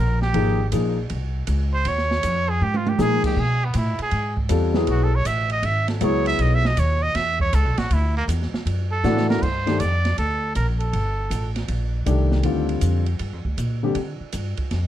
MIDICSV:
0, 0, Header, 1, 6, 480
1, 0, Start_track
1, 0, Tempo, 378310
1, 435, Time_signature, 4, 2, 24, 8
1, 18867, End_track
2, 0, Start_track
2, 0, Title_t, "Muted trumpet"
2, 0, Program_c, 0, 59
2, 0, Note_on_c, 0, 70, 74
2, 268, Note_off_c, 0, 70, 0
2, 276, Note_on_c, 0, 67, 86
2, 873, Note_off_c, 0, 67, 0
2, 2201, Note_on_c, 0, 72, 91
2, 2384, Note_on_c, 0, 73, 99
2, 2403, Note_off_c, 0, 72, 0
2, 3165, Note_on_c, 0, 68, 95
2, 3184, Note_off_c, 0, 73, 0
2, 3337, Note_on_c, 0, 67, 84
2, 3356, Note_off_c, 0, 68, 0
2, 3507, Note_on_c, 0, 65, 79
2, 3526, Note_off_c, 0, 67, 0
2, 3662, Note_on_c, 0, 67, 80
2, 3681, Note_off_c, 0, 65, 0
2, 3816, Note_on_c, 0, 68, 103
2, 3835, Note_off_c, 0, 67, 0
2, 4120, Note_off_c, 0, 68, 0
2, 4129, Note_on_c, 0, 67, 85
2, 4308, Note_on_c, 0, 68, 99
2, 4327, Note_off_c, 0, 67, 0
2, 4623, Note_on_c, 0, 59, 76
2, 4642, Note_off_c, 0, 68, 0
2, 4777, Note_on_c, 0, 64, 82
2, 4796, Note_off_c, 0, 59, 0
2, 5080, Note_off_c, 0, 64, 0
2, 5097, Note_on_c, 0, 68, 87
2, 5529, Note_off_c, 0, 68, 0
2, 6223, Note_on_c, 0, 66, 78
2, 6389, Note_on_c, 0, 69, 81
2, 6408, Note_off_c, 0, 66, 0
2, 6539, Note_on_c, 0, 73, 92
2, 6558, Note_off_c, 0, 69, 0
2, 6676, Note_on_c, 0, 76, 102
2, 6695, Note_off_c, 0, 73, 0
2, 6988, Note_off_c, 0, 76, 0
2, 6999, Note_on_c, 0, 75, 96
2, 7170, Note_on_c, 0, 76, 100
2, 7189, Note_off_c, 0, 75, 0
2, 7475, Note_off_c, 0, 76, 0
2, 7481, Note_on_c, 0, 69, 49
2, 7652, Note_on_c, 0, 73, 87
2, 7671, Note_off_c, 0, 69, 0
2, 7946, Note_off_c, 0, 73, 0
2, 7954, Note_on_c, 0, 76, 108
2, 8140, Note_on_c, 0, 75, 91
2, 8159, Note_off_c, 0, 76, 0
2, 8300, Note_on_c, 0, 76, 103
2, 8319, Note_off_c, 0, 75, 0
2, 8454, Note_on_c, 0, 75, 88
2, 8473, Note_off_c, 0, 76, 0
2, 8614, Note_on_c, 0, 73, 89
2, 8633, Note_off_c, 0, 75, 0
2, 8911, Note_on_c, 0, 75, 105
2, 8930, Note_off_c, 0, 73, 0
2, 9078, Note_on_c, 0, 76, 107
2, 9097, Note_off_c, 0, 75, 0
2, 9388, Note_off_c, 0, 76, 0
2, 9401, Note_on_c, 0, 73, 94
2, 9568, Note_on_c, 0, 69, 85
2, 9587, Note_off_c, 0, 73, 0
2, 9871, Note_on_c, 0, 66, 86
2, 9890, Note_off_c, 0, 69, 0
2, 10060, Note_on_c, 0, 64, 78
2, 10079, Note_off_c, 0, 66, 0
2, 10359, Note_off_c, 0, 64, 0
2, 10367, Note_on_c, 0, 58, 97
2, 10458, Note_off_c, 0, 58, 0
2, 11311, Note_on_c, 0, 69, 93
2, 11753, Note_off_c, 0, 69, 0
2, 11791, Note_on_c, 0, 70, 87
2, 11954, Note_on_c, 0, 72, 97
2, 11973, Note_off_c, 0, 70, 0
2, 12432, Note_on_c, 0, 74, 96
2, 12451, Note_off_c, 0, 72, 0
2, 12910, Note_off_c, 0, 74, 0
2, 12920, Note_on_c, 0, 69, 86
2, 13361, Note_off_c, 0, 69, 0
2, 13396, Note_on_c, 0, 70, 75
2, 13536, Note_off_c, 0, 70, 0
2, 13696, Note_on_c, 0, 69, 78
2, 14610, Note_off_c, 0, 69, 0
2, 18867, End_track
3, 0, Start_track
3, 0, Title_t, "Grand piano"
3, 0, Program_c, 1, 0
3, 422, Note_on_c, 1, 53, 65
3, 428, Note_on_c, 1, 58, 59
3, 434, Note_on_c, 1, 63, 61
3, 442, Note_on_c, 1, 68, 68
3, 713, Note_off_c, 1, 53, 0
3, 716, Note_off_c, 1, 58, 0
3, 719, Note_off_c, 1, 63, 0
3, 723, Note_off_c, 1, 68, 0
3, 910, Note_on_c, 1, 53, 56
3, 919, Note_on_c, 1, 58, 51
3, 921, Note_on_c, 1, 63, 50
3, 923, Note_on_c, 1, 68, 64
3, 1197, Note_off_c, 1, 53, 0
3, 1201, Note_off_c, 1, 58, 0
3, 1202, Note_off_c, 1, 63, 0
3, 1204, Note_off_c, 1, 68, 0
3, 3783, Note_on_c, 1, 53, 67
3, 3786, Note_on_c, 1, 58, 62
3, 3792, Note_on_c, 1, 63, 65
3, 3794, Note_on_c, 1, 68, 78
3, 4267, Note_off_c, 1, 53, 0
3, 4269, Note_off_c, 1, 58, 0
3, 4272, Note_off_c, 1, 63, 0
3, 4273, Note_off_c, 1, 68, 0
3, 5696, Note_on_c, 1, 60, 64
3, 5698, Note_on_c, 1, 55, 68
3, 5710, Note_on_c, 1, 65, 63
3, 5713, Note_on_c, 1, 69, 75
3, 5987, Note_off_c, 1, 60, 0
3, 5988, Note_off_c, 1, 55, 0
3, 5994, Note_off_c, 1, 65, 0
3, 5996, Note_off_c, 1, 69, 0
3, 6015, Note_on_c, 1, 54, 67
3, 6026, Note_on_c, 1, 59, 61
3, 6027, Note_on_c, 1, 64, 59
3, 6034, Note_on_c, 1, 68, 78
3, 6437, Note_off_c, 1, 54, 0
3, 6442, Note_off_c, 1, 59, 0
3, 6443, Note_off_c, 1, 64, 0
3, 6447, Note_off_c, 1, 68, 0
3, 7623, Note_on_c, 1, 54, 68
3, 7637, Note_on_c, 1, 59, 59
3, 7638, Note_on_c, 1, 64, 63
3, 7641, Note_on_c, 1, 68, 74
3, 8358, Note_off_c, 1, 54, 0
3, 8365, Note_off_c, 1, 59, 0
3, 8366, Note_off_c, 1, 64, 0
3, 8367, Note_off_c, 1, 68, 0
3, 11467, Note_on_c, 1, 52, 78
3, 11472, Note_on_c, 1, 57, 74
3, 11477, Note_on_c, 1, 62, 76
3, 11477, Note_on_c, 1, 66, 89
3, 11947, Note_off_c, 1, 52, 0
3, 11950, Note_off_c, 1, 57, 0
3, 11952, Note_off_c, 1, 62, 0
3, 11952, Note_off_c, 1, 66, 0
3, 12261, Note_on_c, 1, 51, 64
3, 12268, Note_on_c, 1, 57, 59
3, 12269, Note_on_c, 1, 62, 58
3, 12275, Note_on_c, 1, 67, 70
3, 12410, Note_off_c, 1, 51, 0
3, 12413, Note_off_c, 1, 57, 0
3, 12414, Note_off_c, 1, 62, 0
3, 12417, Note_off_c, 1, 67, 0
3, 15301, Note_on_c, 1, 51, 58
3, 15305, Note_on_c, 1, 57, 52
3, 15309, Note_on_c, 1, 62, 57
3, 15318, Note_on_c, 1, 67, 66
3, 15780, Note_on_c, 1, 50, 60
3, 15788, Note_on_c, 1, 55, 55
3, 15793, Note_on_c, 1, 60, 56
3, 15799, Note_on_c, 1, 65, 70
3, 16039, Note_off_c, 1, 51, 0
3, 16040, Note_off_c, 1, 57, 0
3, 16043, Note_off_c, 1, 62, 0
3, 16047, Note_off_c, 1, 67, 0
3, 16518, Note_off_c, 1, 50, 0
3, 16522, Note_off_c, 1, 55, 0
3, 16525, Note_off_c, 1, 60, 0
3, 16528, Note_off_c, 1, 65, 0
3, 17548, Note_on_c, 1, 50, 72
3, 17548, Note_on_c, 1, 55, 60
3, 17558, Note_on_c, 1, 60, 64
3, 17563, Note_on_c, 1, 67, 71
3, 17695, Note_off_c, 1, 50, 0
3, 17695, Note_off_c, 1, 55, 0
3, 17700, Note_off_c, 1, 60, 0
3, 17703, Note_off_c, 1, 67, 0
3, 18867, End_track
4, 0, Start_track
4, 0, Title_t, "Upright bass"
4, 0, Program_c, 2, 32
4, 0, Note_on_c, 2, 34, 92
4, 424, Note_off_c, 2, 34, 0
4, 437, Note_on_c, 2, 32, 84
4, 902, Note_off_c, 2, 32, 0
4, 921, Note_on_c, 2, 34, 84
4, 1384, Note_off_c, 2, 34, 0
4, 1402, Note_on_c, 2, 36, 81
4, 1864, Note_off_c, 2, 36, 0
4, 1873, Note_on_c, 2, 37, 90
4, 2339, Note_off_c, 2, 37, 0
4, 2352, Note_on_c, 2, 39, 80
4, 2818, Note_off_c, 2, 39, 0
4, 2838, Note_on_c, 2, 41, 84
4, 3301, Note_off_c, 2, 41, 0
4, 3313, Note_on_c, 2, 44, 74
4, 3778, Note_off_c, 2, 44, 0
4, 3790, Note_on_c, 2, 46, 86
4, 4084, Note_off_c, 2, 46, 0
4, 4268, Note_on_c, 2, 47, 83
4, 4735, Note_off_c, 2, 47, 0
4, 4752, Note_on_c, 2, 45, 89
4, 5045, Note_off_c, 2, 45, 0
4, 5224, Note_on_c, 2, 44, 78
4, 5692, Note_off_c, 2, 44, 0
4, 5702, Note_on_c, 2, 40, 86
4, 6171, Note_off_c, 2, 40, 0
4, 6186, Note_on_c, 2, 35, 86
4, 6653, Note_off_c, 2, 35, 0
4, 6663, Note_on_c, 2, 33, 90
4, 7131, Note_off_c, 2, 33, 0
4, 7138, Note_on_c, 2, 32, 85
4, 7609, Note_off_c, 2, 32, 0
4, 7628, Note_on_c, 2, 37, 89
4, 8094, Note_off_c, 2, 37, 0
4, 8103, Note_on_c, 2, 35, 88
4, 8571, Note_off_c, 2, 35, 0
4, 8585, Note_on_c, 2, 39, 87
4, 9052, Note_off_c, 2, 39, 0
4, 9067, Note_on_c, 2, 40, 89
4, 9533, Note_off_c, 2, 40, 0
4, 9551, Note_on_c, 2, 37, 94
4, 9707, Note_off_c, 2, 37, 0
4, 9707, Note_on_c, 2, 35, 64
4, 9859, Note_off_c, 2, 35, 0
4, 9866, Note_on_c, 2, 33, 65
4, 10015, Note_off_c, 2, 33, 0
4, 10026, Note_on_c, 2, 38, 84
4, 10492, Note_off_c, 2, 38, 0
4, 10503, Note_on_c, 2, 40, 96
4, 10798, Note_off_c, 2, 40, 0
4, 10984, Note_on_c, 2, 42, 89
4, 11451, Note_off_c, 2, 42, 0
4, 11468, Note_on_c, 2, 45, 97
4, 11933, Note_off_c, 2, 45, 0
4, 11957, Note_on_c, 2, 43, 81
4, 12418, Note_off_c, 2, 43, 0
4, 12439, Note_on_c, 2, 41, 85
4, 12899, Note_off_c, 2, 41, 0
4, 12916, Note_on_c, 2, 38, 75
4, 13378, Note_off_c, 2, 38, 0
4, 13393, Note_on_c, 2, 34, 83
4, 13856, Note_off_c, 2, 34, 0
4, 13870, Note_on_c, 2, 31, 76
4, 14335, Note_off_c, 2, 31, 0
4, 14344, Note_on_c, 2, 33, 83
4, 14812, Note_off_c, 2, 33, 0
4, 14824, Note_on_c, 2, 34, 73
4, 15293, Note_off_c, 2, 34, 0
4, 15305, Note_on_c, 2, 36, 89
4, 15768, Note_off_c, 2, 36, 0
4, 15775, Note_on_c, 2, 38, 77
4, 16249, Note_off_c, 2, 38, 0
4, 16261, Note_on_c, 2, 41, 91
4, 16731, Note_off_c, 2, 41, 0
4, 16745, Note_on_c, 2, 43, 76
4, 16909, Note_off_c, 2, 43, 0
4, 16909, Note_on_c, 2, 41, 56
4, 17058, Note_off_c, 2, 41, 0
4, 17065, Note_on_c, 2, 38, 65
4, 17213, Note_off_c, 2, 38, 0
4, 17220, Note_on_c, 2, 46, 82
4, 17692, Note_off_c, 2, 46, 0
4, 17704, Note_on_c, 2, 50, 82
4, 18001, Note_off_c, 2, 50, 0
4, 18186, Note_on_c, 2, 43, 84
4, 18483, Note_off_c, 2, 43, 0
4, 18665, Note_on_c, 2, 41, 78
4, 18867, Note_off_c, 2, 41, 0
4, 18867, End_track
5, 0, Start_track
5, 0, Title_t, "Muted upright bass strokes"
5, 4104, Note_on_c, 9, 29, 37
5, 4231, Note_off_c, 9, 29, 0
5, 5063, Note_on_c, 9, 29, 40
5, 5190, Note_off_c, 9, 29, 0
5, 10821, Note_on_c, 9, 29, 42
5, 10948, Note_off_c, 9, 29, 0
5, 18021, Note_on_c, 9, 29, 40
5, 18147, Note_off_c, 9, 29, 0
5, 18499, Note_on_c, 9, 29, 40
5, 18626, Note_off_c, 9, 29, 0
5, 18867, End_track
6, 0, Start_track
6, 0, Title_t, "Drums"
6, 276, Note_on_c, 9, 38, 34
6, 403, Note_off_c, 9, 38, 0
6, 432, Note_on_c, 9, 51, 61
6, 559, Note_off_c, 9, 51, 0
6, 911, Note_on_c, 9, 44, 55
6, 911, Note_on_c, 9, 51, 70
6, 1038, Note_off_c, 9, 44, 0
6, 1038, Note_off_c, 9, 51, 0
6, 1391, Note_on_c, 9, 51, 60
6, 1518, Note_off_c, 9, 51, 0
6, 1865, Note_on_c, 9, 44, 49
6, 1865, Note_on_c, 9, 51, 66
6, 1992, Note_off_c, 9, 44, 0
6, 1992, Note_off_c, 9, 51, 0
6, 2347, Note_on_c, 9, 51, 63
6, 2474, Note_off_c, 9, 51, 0
6, 2516, Note_on_c, 9, 38, 29
6, 2643, Note_off_c, 9, 38, 0
6, 2680, Note_on_c, 9, 38, 46
6, 2806, Note_off_c, 9, 38, 0
6, 2829, Note_on_c, 9, 44, 63
6, 2829, Note_on_c, 9, 51, 71
6, 2956, Note_off_c, 9, 44, 0
6, 2956, Note_off_c, 9, 51, 0
6, 3316, Note_on_c, 9, 48, 44
6, 3443, Note_off_c, 9, 48, 0
6, 3478, Note_on_c, 9, 48, 57
6, 3605, Note_off_c, 9, 48, 0
6, 3635, Note_on_c, 9, 48, 81
6, 3762, Note_off_c, 9, 48, 0
6, 3788, Note_on_c, 9, 44, 64
6, 3795, Note_on_c, 9, 38, 51
6, 3915, Note_off_c, 9, 44, 0
6, 3921, Note_off_c, 9, 38, 0
6, 4107, Note_on_c, 9, 36, 72
6, 4110, Note_on_c, 9, 49, 76
6, 4234, Note_off_c, 9, 36, 0
6, 4236, Note_off_c, 9, 49, 0
6, 4739, Note_on_c, 9, 44, 54
6, 4739, Note_on_c, 9, 51, 68
6, 4866, Note_off_c, 9, 44, 0
6, 4866, Note_off_c, 9, 51, 0
6, 5058, Note_on_c, 9, 51, 47
6, 5184, Note_off_c, 9, 51, 0
6, 5218, Note_on_c, 9, 51, 56
6, 5345, Note_off_c, 9, 51, 0
6, 5544, Note_on_c, 9, 36, 55
6, 5670, Note_off_c, 9, 36, 0
6, 5698, Note_on_c, 9, 44, 54
6, 5698, Note_on_c, 9, 51, 71
6, 5825, Note_off_c, 9, 44, 0
6, 5825, Note_off_c, 9, 51, 0
6, 6017, Note_on_c, 9, 38, 60
6, 6144, Note_off_c, 9, 38, 0
6, 6179, Note_on_c, 9, 51, 60
6, 6305, Note_off_c, 9, 51, 0
6, 6663, Note_on_c, 9, 44, 64
6, 6663, Note_on_c, 9, 51, 75
6, 6790, Note_off_c, 9, 44, 0
6, 6790, Note_off_c, 9, 51, 0
6, 6973, Note_on_c, 9, 51, 45
6, 7100, Note_off_c, 9, 51, 0
6, 7143, Note_on_c, 9, 51, 62
6, 7270, Note_off_c, 9, 51, 0
6, 7458, Note_on_c, 9, 51, 50
6, 7465, Note_on_c, 9, 38, 44
6, 7585, Note_off_c, 9, 51, 0
6, 7592, Note_off_c, 9, 38, 0
6, 7622, Note_on_c, 9, 44, 52
6, 7622, Note_on_c, 9, 51, 70
6, 7749, Note_off_c, 9, 44, 0
6, 7749, Note_off_c, 9, 51, 0
6, 7942, Note_on_c, 9, 51, 49
6, 8068, Note_off_c, 9, 51, 0
6, 8104, Note_on_c, 9, 51, 62
6, 8231, Note_off_c, 9, 51, 0
6, 8437, Note_on_c, 9, 38, 57
6, 8563, Note_off_c, 9, 38, 0
6, 8589, Note_on_c, 9, 44, 69
6, 8589, Note_on_c, 9, 51, 70
6, 8716, Note_off_c, 9, 44, 0
6, 8716, Note_off_c, 9, 51, 0
6, 9068, Note_on_c, 9, 51, 59
6, 9075, Note_on_c, 9, 38, 40
6, 9195, Note_off_c, 9, 51, 0
6, 9202, Note_off_c, 9, 38, 0
6, 9387, Note_on_c, 9, 36, 61
6, 9514, Note_off_c, 9, 36, 0
6, 9552, Note_on_c, 9, 44, 69
6, 9552, Note_on_c, 9, 51, 73
6, 9679, Note_off_c, 9, 44, 0
6, 9679, Note_off_c, 9, 51, 0
6, 9865, Note_on_c, 9, 51, 50
6, 9872, Note_on_c, 9, 38, 56
6, 9992, Note_off_c, 9, 51, 0
6, 9998, Note_off_c, 9, 38, 0
6, 10031, Note_on_c, 9, 51, 67
6, 10158, Note_off_c, 9, 51, 0
6, 10516, Note_on_c, 9, 44, 69
6, 10516, Note_on_c, 9, 51, 73
6, 10643, Note_off_c, 9, 44, 0
6, 10643, Note_off_c, 9, 51, 0
6, 10684, Note_on_c, 9, 38, 29
6, 10811, Note_off_c, 9, 38, 0
6, 10838, Note_on_c, 9, 38, 48
6, 10965, Note_off_c, 9, 38, 0
6, 10997, Note_on_c, 9, 51, 63
6, 11123, Note_off_c, 9, 51, 0
6, 11471, Note_on_c, 9, 44, 52
6, 11477, Note_on_c, 9, 38, 51
6, 11598, Note_off_c, 9, 44, 0
6, 11604, Note_off_c, 9, 38, 0
6, 11639, Note_on_c, 9, 38, 64
6, 11766, Note_off_c, 9, 38, 0
6, 11804, Note_on_c, 9, 38, 87
6, 11931, Note_off_c, 9, 38, 0
6, 11958, Note_on_c, 9, 36, 67
6, 11961, Note_on_c, 9, 49, 67
6, 12085, Note_off_c, 9, 36, 0
6, 12088, Note_off_c, 9, 49, 0
6, 12270, Note_on_c, 9, 51, 44
6, 12277, Note_on_c, 9, 38, 45
6, 12397, Note_off_c, 9, 51, 0
6, 12404, Note_off_c, 9, 38, 0
6, 12431, Note_on_c, 9, 44, 52
6, 12431, Note_on_c, 9, 51, 63
6, 12558, Note_off_c, 9, 44, 0
6, 12558, Note_off_c, 9, 51, 0
6, 12750, Note_on_c, 9, 51, 42
6, 12756, Note_on_c, 9, 38, 46
6, 12876, Note_off_c, 9, 51, 0
6, 12883, Note_off_c, 9, 38, 0
6, 12914, Note_on_c, 9, 51, 54
6, 13041, Note_off_c, 9, 51, 0
6, 13389, Note_on_c, 9, 44, 56
6, 13389, Note_on_c, 9, 51, 60
6, 13516, Note_off_c, 9, 44, 0
6, 13516, Note_off_c, 9, 51, 0
6, 13707, Note_on_c, 9, 51, 42
6, 13834, Note_off_c, 9, 51, 0
6, 13872, Note_on_c, 9, 51, 58
6, 13998, Note_off_c, 9, 51, 0
6, 14351, Note_on_c, 9, 44, 57
6, 14351, Note_on_c, 9, 51, 65
6, 14478, Note_off_c, 9, 44, 0
6, 14478, Note_off_c, 9, 51, 0
6, 14663, Note_on_c, 9, 51, 46
6, 14669, Note_on_c, 9, 38, 35
6, 14790, Note_off_c, 9, 51, 0
6, 14796, Note_off_c, 9, 38, 0
6, 14824, Note_on_c, 9, 51, 59
6, 14950, Note_off_c, 9, 51, 0
6, 15306, Note_on_c, 9, 44, 59
6, 15306, Note_on_c, 9, 51, 58
6, 15432, Note_off_c, 9, 44, 0
6, 15432, Note_off_c, 9, 51, 0
6, 15626, Note_on_c, 9, 38, 46
6, 15753, Note_off_c, 9, 38, 0
6, 15775, Note_on_c, 9, 51, 57
6, 15902, Note_off_c, 9, 51, 0
6, 16100, Note_on_c, 9, 51, 44
6, 16226, Note_off_c, 9, 51, 0
6, 16257, Note_on_c, 9, 44, 63
6, 16257, Note_on_c, 9, 51, 67
6, 16383, Note_off_c, 9, 44, 0
6, 16383, Note_off_c, 9, 51, 0
6, 16573, Note_on_c, 9, 51, 44
6, 16700, Note_off_c, 9, 51, 0
6, 16738, Note_on_c, 9, 51, 56
6, 16865, Note_off_c, 9, 51, 0
6, 17064, Note_on_c, 9, 36, 50
6, 17190, Note_off_c, 9, 36, 0
6, 17227, Note_on_c, 9, 44, 60
6, 17227, Note_on_c, 9, 51, 62
6, 17354, Note_off_c, 9, 44, 0
6, 17354, Note_off_c, 9, 51, 0
6, 17698, Note_on_c, 9, 51, 60
6, 17825, Note_off_c, 9, 51, 0
6, 18175, Note_on_c, 9, 44, 66
6, 18175, Note_on_c, 9, 51, 66
6, 18302, Note_off_c, 9, 44, 0
6, 18302, Note_off_c, 9, 51, 0
6, 18491, Note_on_c, 9, 51, 46
6, 18502, Note_on_c, 9, 36, 43
6, 18618, Note_off_c, 9, 51, 0
6, 18629, Note_off_c, 9, 36, 0
6, 18662, Note_on_c, 9, 51, 55
6, 18668, Note_on_c, 9, 38, 35
6, 18789, Note_off_c, 9, 51, 0
6, 18795, Note_off_c, 9, 38, 0
6, 18867, End_track
0, 0, End_of_file